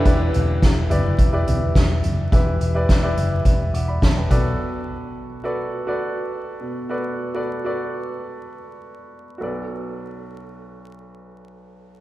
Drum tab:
HH |xxxxxxxx|xxxxxxxx|--------|--------|
SD |--o---o-|--o---o-|--------|--------|
FT |-o-o-o-o|--------|--------|--------|
BD |o-o-o-o-|o-o-o-oo|--------|--------|

HH |--------|
SD |--------|
FT |--------|
BD |--------|